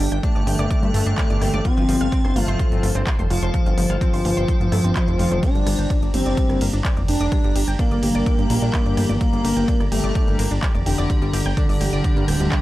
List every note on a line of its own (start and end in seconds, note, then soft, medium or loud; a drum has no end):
0.00 0.14 D4 loud
0.00 1.61 D4 medium
0.00 1.61 G4 medium
0.00 5.39 A4 medium
0.00 1.61 G5 medium
0.12 0.20 G1 medium
0.12 0.15 G5 medium
0.12 0.15 G6 medium
0.12 closed hi-hat soft
0.23 1.67 A3 loud
0.23 0.31 D4 loud
0.23 0.31 D5 medium
0.23 kick loud
0.23 closed hi-hat soft
0.35 0.43 G1 medium
0.35 0.38 D5 medium
0.35 0.38 D6 medium
0.35 closed hi-hat soft
0.47 0.55 G1 loud
0.47 1.27 D3 medium
0.47 1.27 A3 medium
0.47 1.27 D4 medium
0.47 0.55 G4 medium
0.47 0.55 G5 medium
0.47 mid tom medium
0.47 open hi-hat loud
0.59 0.67 G1 medium
0.59 0.62 D5 loud
0.59 0.62 D6 medium
0.59 cross-stick medium
0.59 closed hi-hat soft
0.71 0.78 D5 medium
0.71 0.78 D6 medium
0.71 kick loud
0.71 closed hi-hat soft
0.83 0.91 G2 medium
0.83 0.88 A3 medium
0.83 0.88 A4 medium
0.83 closed hi-hat soft
0.94 1.03 G1 loud
0.94 0.97 A3 loud
0.94 0.97 A4 medium
0.94 open hi-hat loud
1.06 1.14 G1 medium
1.06 1.11 D4 loud
1.06 1.11 D5 medium
1.06 closed hi-hat soft
1.18 1.21 D5 loud
1.18 1.21 D6 medium
1.18 kick loud
1.18 clap loud
1.18 closed hi-hat soft
1.30 1.38 G1 medium
1.30 1.50 D3 loud
1.30 1.50 A3 medium
1.30 1.50 D4 loud
1.30 1.33 D5 medium
1.30 1.33 D6 medium
1.30 closed hi-hat soft
1.41 1.50 G1 loud
1.41 1.49 G4 medium
1.41 1.49 G5 medium
1.41 cross-stick medium
1.41 mid tom medium
1.41 open hi-hat loud
1.53 1.61 G1 medium
1.53 1.57 D5 loud
1.53 1.57 D6 medium
1.53 closed hi-hat soft
1.53 mid tom medium
1.65 1.70 F3 medium
1.65 2.37 C4 loud
1.65 1.70 F4 medium
1.65 5.39 F4 medium
1.65 5.39 C5 medium
1.65 3.52 A5 medium
1.65 kick loud
1.65 closed hi-hat soft
1.77 1.85 G1 medium
1.77 1.82 F3 loud
1.77 1.82 F4 medium
1.77 closed hi-hat soft
1.89 1.97 G1 loud
1.89 1.92 F3 loud
1.89 1.92 F4 medium
1.89 open hi-hat loud
2.01 2.09 G1 medium
2.01 2.04 F5 medium
2.01 2.04 F6 medium
2.01 closed hi-hat soft
2.12 2.20 C4 loud
2.12 2.20 C5 medium
2.12 kick loud
2.12 closed hi-hat soft
2.24 2.32 G1 medium
2.24 2.27 C5 medium
2.24 2.27 C6 medium
2.24 cross-stick medium
2.24 closed hi-hat soft
2.36 2.44 G1 loud
2.36 2.69 F3 medium
2.36 2.79 A3 medium
2.36 2.69 C4 medium
2.36 2.69 F4 medium
2.36 2.44 F4 medium
2.36 2.44 F5 medium
2.36 mid tom medium
2.36 open hi-hat loud
2.48 2.56 G1 medium
2.48 2.51 C5 loud
2.48 2.51 C6 medium
2.48 closed hi-hat soft
2.59 2.67 C5 medium
2.59 2.67 C6 medium
2.59 kick loud
2.59 closed hi-hat soft
2.72 2.80 G1 medium
2.72 2.84 F3 medium
2.72 2.77 A3 medium
2.72 2.84 C4 medium
2.72 2.84 F4 medium
2.72 2.77 A4 medium
2.72 closed hi-hat soft
2.83 2.91 G1 loud
2.83 2.86 A3 loud
2.83 2.86 A4 medium
2.83 open hi-hat loud
2.95 3.03 G1 medium
2.95 3.00 C4 loud
2.95 3.00 C5 medium
2.95 closed hi-hat soft
3.07 3.10 C5 loud
3.07 3.10 C6 medium
3.07 kick loud
3.07 cross-stick medium
3.07 clap loud
3.07 closed hi-hat soft
3.19 3.27 F1 medium
3.19 3.22 C5 medium
3.19 3.22 C6 medium
3.19 closed hi-hat soft
3.19 mid tom medium
3.30 3.39 F1 loud
3.30 3.92 F3 loud
3.30 3.38 F4 medium
3.30 3.38 F5 medium
3.30 open hi-hat loud
3.42 3.50 F1 medium
3.42 3.46 C5 loud
3.42 3.46 C6 medium
3.42 closed hi-hat soft
3.54 3.59 F3 medium
3.54 3.59 F4 medium
3.54 5.41 G5 medium
3.54 kick loud
3.54 closed hi-hat soft
3.66 3.74 G1 medium
3.66 3.71 F3 loud
3.66 3.71 F4 medium
3.66 closed hi-hat soft
3.78 3.86 G1 loud
3.78 3.81 F3 loud
3.78 3.81 F4 medium
3.78 open hi-hat loud
3.90 3.98 G1 medium
3.90 3.93 F5 medium
3.90 3.93 F6 medium
3.90 cross-stick soft
3.90 closed hi-hat soft
4.01 5.44 F3 loud
4.01 4.09 C4 loud
4.01 4.09 C5 medium
4.01 kick loud
4.01 closed hi-hat soft
4.13 4.21 G1 medium
4.13 4.16 C5 medium
4.13 4.16 C6 medium
4.13 open hi-hat medium
4.25 4.33 G1 loud
4.25 4.33 F4 medium
4.25 4.33 F5 medium
4.25 mid tom medium
4.25 open hi-hat loud
4.37 4.45 G1 medium
4.37 4.40 C5 loud
4.37 4.40 C6 medium
4.37 closed hi-hat soft
4.48 4.56 C5 medium
4.48 4.56 C6 medium
4.48 kick loud
4.48 closed hi-hat soft
4.60 4.68 G1 medium
4.60 4.66 A3 medium
4.60 4.66 A4 medium
4.60 closed hi-hat soft
4.72 4.80 G1 loud
4.72 4.75 A3 loud
4.72 4.75 A4 medium
4.72 cross-stick medium
4.72 open hi-hat loud
4.84 4.92 G1 medium
4.84 4.89 C4 loud
4.84 4.89 C5 medium
4.84 closed hi-hat soft
4.96 4.99 C5 loud
4.96 4.99 C6 medium
4.96 kick loud
4.96 clap loud
4.96 closed hi-hat soft
5.08 5.16 F1 medium
5.08 5.28 F3 medium
5.08 5.28 C4 medium
5.08 5.28 F4 loud
5.08 5.11 C5 medium
5.08 5.11 C6 medium
5.08 closed hi-hat soft
5.19 5.28 F1 loud
5.19 5.27 F4 medium
5.19 5.27 F5 medium
5.19 mid tom medium
5.19 open hi-hat loud
5.31 5.39 F1 loud
5.31 5.34 C5 loud
5.31 5.34 C6 medium
5.31 closed hi-hat soft
5.31 mid tom medium
5.43 5.48 G3 medium
5.43 6.05 D4 loud
5.43 12.62 G4 medium
5.43 5.48 G4 medium
5.43 12.62 D5 medium
5.43 12.62 A#5 medium
5.43 kick loud
5.43 closed hi-hat soft
5.43 ride medium
5.55 5.63 G1 medium
5.55 5.60 G3 loud
5.55 5.60 G4 medium
5.55 closed hi-hat soft
5.66 5.75 G1 loud
5.66 5.70 G3 loud
5.66 5.70 G4 medium
5.66 cross-stick medium
5.66 open hi-hat loud
5.66 ride medium
5.79 5.87 G1 medium
5.79 5.82 G5 medium
5.79 5.82 G6 medium
5.79 closed hi-hat soft
5.90 5.98 D4 loud
5.90 5.98 D5 medium
5.90 kick loud
5.90 closed hi-hat soft
5.90 ride medium
6.02 6.10 G1 medium
6.02 6.05 D5 medium
6.02 6.05 D6 medium
6.02 closed hi-hat soft
6.14 6.22 G1 loud
6.14 6.47 G3 medium
6.14 6.57 C4 medium
6.14 6.47 D4 medium
6.14 6.47 G4 medium
6.14 6.22 G4 medium
6.14 6.22 G5 medium
6.14 mid tom medium
6.14 open hi-hat loud
6.14 ride medium
6.26 6.34 G1 medium
6.26 6.29 D5 loud
6.26 6.29 D6 medium
6.26 closed hi-hat soft
6.37 6.45 D5 medium
6.37 6.45 D6 medium
6.37 kick loud
6.37 closed hi-hat soft
6.37 ride medium
6.49 6.57 G1 medium
6.49 6.62 G3 medium
6.49 6.55 A#3 medium
6.49 6.62 D4 medium
6.49 6.62 G4 medium
6.49 6.55 A#4 medium
6.49 cross-stick soft
6.49 closed hi-hat soft
6.61 6.69 G1 loud
6.61 6.64 A#3 loud
6.61 6.64 A#4 medium
6.61 open hi-hat loud
6.61 ride medium
6.73 6.81 G1 medium
6.73 6.78 D4 loud
6.73 6.78 D5 medium
6.73 closed hi-hat soft
6.85 6.88 D5 loud
6.85 6.88 D6 medium
6.85 kick loud
6.85 clap loud
6.85 closed hi-hat soft
6.85 ride medium
6.97 7.05 F1 medium
6.97 7.00 D5 medium
6.97 7.00 D6 medium
6.97 closed hi-hat soft
6.97 mid tom medium
7.08 7.17 F1 loud
7.08 7.70 D4 loud
7.08 7.70 D4 medium
7.08 7.16 G4 medium
7.08 7.16 G5 medium
7.08 open hi-hat loud
7.08 ride medium
7.20 7.28 F1 medium
7.20 7.24 D5 loud
7.20 7.24 D6 medium
7.20 closed hi-hat soft
7.32 7.37 G3 medium
7.32 7.37 G4 medium
7.32 kick loud
7.32 cross-stick medium
7.32 closed hi-hat soft
7.32 ride soft
7.44 7.52 G1 medium
7.44 7.49 G3 loud
7.44 7.49 G4 medium
7.44 closed hi-hat soft
7.56 7.64 G1 loud
7.56 7.59 G3 loud
7.56 7.59 G4 medium
7.56 open hi-hat loud
7.56 ride medium
7.68 7.76 G1 medium
7.68 7.71 G5 medium
7.68 7.71 G6 medium
7.68 closed hi-hat soft
7.79 9.12 A#3 loud
7.79 7.87 D4 loud
7.79 7.87 D5 medium
7.79 kick loud
7.79 closed hi-hat soft
7.79 ride medium
7.91 7.99 G1 medium
7.91 7.94 D5 medium
7.91 7.94 D6 medium
7.91 closed hi-hat soft
8.03 8.11 G1 loud
8.03 8.83 G3 medium
8.03 8.83 D4 medium
8.03 8.83 G4 medium
8.03 8.11 G4 medium
8.03 8.11 G5 medium
8.03 mid tom medium
8.03 open hi-hat loud
8.03 ride medium
8.15 8.23 G1 medium
8.15 8.18 D5 loud
8.15 8.18 D6 medium
8.15 cross-stick medium
8.26 8.34 D5 medium
8.26 8.34 D6 medium
8.26 kick loud
8.26 closed hi-hat soft
8.26 ride medium
8.39 8.46 G2 medium
8.39 8.44 A#3 medium
8.39 8.44 A#4 medium
8.39 closed hi-hat soft
8.50 8.58 A#1 loud
8.50 8.53 A#3 loud
8.50 8.53 A#4 medium
8.50 open hi-hat loud
8.50 ride medium
8.62 8.70 A#1 medium
8.62 8.67 D4 loud
8.62 8.67 D5 medium
8.62 closed hi-hat soft
8.74 8.77 D5 loud
8.74 8.77 D6 medium
8.74 kick loud
8.74 clap loud
8.74 closed hi-hat soft
8.74 ride medium
8.86 8.94 G1 medium
8.86 9.06 G3 medium
8.86 9.06 D4 medium
8.86 9.06 G4 loud
8.86 8.89 D5 medium
8.86 8.89 D6 medium
8.86 closed hi-hat soft
8.97 9.06 G1 loud
8.97 9.05 G4 medium
8.97 9.05 G5 medium
8.97 cross-stick medium
8.97 mid tom medium
8.97 open hi-hat loud
8.97 ride medium
9.09 9.17 G1 medium
9.09 9.12 D5 loud
9.09 9.12 D6 medium
9.09 closed hi-hat soft
9.09 mid tom medium
9.21 9.26 G3 medium
9.21 9.83 A#3 loud
9.21 9.26 G4 medium
9.21 kick loud
9.21 closed hi-hat soft
9.21 ride soft
9.33 9.41 G1 medium
9.33 9.38 G3 loud
9.33 9.38 G4 medium
9.33 closed hi-hat soft
9.44 9.53 G1 medium
9.44 9.48 G3 loud
9.44 9.48 G4 medium
9.44 open hi-hat loud
9.44 ride medium
9.57 9.65 G1 medium
9.57 9.60 G5 medium
9.57 9.60 G6 medium
9.57 closed hi-hat soft
9.68 9.76 D4 loud
9.68 9.76 D5 medium
9.68 kick loud
9.68 closed hi-hat soft
9.68 ride soft
9.80 9.88 G1 medium
9.80 9.83 D5 medium
9.80 9.83 D6 medium
9.80 cross-stick medium
9.80 closed hi-hat soft
9.92 10.00 G1 loud
9.92 10.25 G3 medium
9.92 10.35 A3 medium
9.92 10.36 A3 medium
9.92 10.25 D4 medium
9.92 10.00 G4 medium
9.92 10.25 G4 medium
9.92 10.00 G5 medium
9.92 mid tom medium
9.92 open hi-hat loud
9.92 ride medium
10.04 10.12 G1 medium
10.04 10.07 D5 loud
10.04 10.07 D6 medium
10.04 closed hi-hat soft
10.15 10.23 D5 medium
10.15 10.23 D6 medium
10.15 kick loud
10.15 closed hi-hat soft
10.15 ride medium
10.27 10.36 G1 medium
10.27 10.40 G3 medium
10.27 10.32 A#3 medium
10.27 10.40 D4 medium
10.27 10.40 G4 medium
10.27 10.32 A#4 medium
10.27 closed hi-hat soft
10.39 10.47 G1 loud
10.39 10.42 A#3 loud
10.39 10.42 A#4 medium
10.39 open hi-hat loud
10.39 ride medium
10.51 10.59 G1 medium
10.51 10.56 D4 loud
10.51 10.56 D5 medium
10.51 closed hi-hat soft
10.62 10.66 D5 loud
10.62 10.66 D6 medium
10.62 kick loud
10.62 cross-stick medium
10.62 clap loud
10.62 closed hi-hat soft
10.75 10.83 F1 medium
10.75 10.78 D5 medium
10.75 10.78 D6 medium
10.75 closed hi-hat soft
10.75 mid tom medium
10.86 10.95 F1 loud
10.86 11.48 D3 medium
10.86 11.48 D3 loud
10.86 10.94 G4 medium
10.86 10.94 G5 medium
10.86 open hi-hat loud
10.86 ride medium
10.98 11.06 F1 medium
10.98 11.01 D5 loud
10.98 11.01 D6 medium
10.98 closed hi-hat soft
11.10 11.15 G3 medium
11.10 11.15 G4 medium
11.10 kick loud
11.10 closed hi-hat soft
11.10 ride soft
11.22 11.30 G1 medium
11.22 11.27 G3 loud
11.22 11.27 G4 medium
11.22 closed hi-hat soft
11.33 11.42 G1 loud
11.33 11.37 G3 loud
11.33 11.37 G4 medium
11.33 open hi-hat loud
11.33 ride medium
11.46 11.54 G1 medium
11.46 11.49 G5 medium
11.46 11.49 G6 medium
11.46 cross-stick medium
11.46 closed hi-hat soft
11.57 12.62 D3 loud
11.57 11.65 D4 loud
11.57 11.65 D5 medium
11.57 kick loud
11.57 closed hi-hat soft
11.57 ride medium
11.69 11.77 G1 medium
11.69 11.72 D5 medium
11.69 11.72 D6 medium
11.69 open hi-hat medium
11.81 11.89 G1 loud
11.81 12.38 G3 medium
11.81 12.38 D4 medium
11.81 12.38 G4 medium
11.81 11.89 G4 medium
11.81 11.89 G5 medium
11.81 mid tom medium
11.81 open hi-hat loud
11.81 ride medium
11.93 12.01 G1 medium
11.93 11.96 D5 loud
11.93 11.96 D6 medium
11.93 closed hi-hat soft
12.04 12.12 D5 medium
12.04 12.12 D6 medium
12.04 kick loud
12.04 closed hi-hat soft
12.04 ride medium
12.16 12.24 G2 medium
12.16 12.22 A#3 medium
12.16 12.22 A#4 medium
12.16 closed hi-hat soft
12.28 12.36 D1 loud
12.28 12.33 G5 medium
12.28 12.33 G6 medium
12.28 cross-stick medium
12.28 open hi-hat loud
12.28 ride medium
12.40 12.48 D1 medium
12.40 12.62 G3 medium
12.40 12.43 G3 medium
12.40 12.62 D4 medium
12.40 12.62 G4 loud
12.40 12.43 G4 medium
12.40 closed hi-hat soft
12.52 12.57 D4 loud
12.52 12.57 D5 medium
12.52 kick loud
12.52 clap loud
12.52 closed hi-hat soft
12.52 ride medium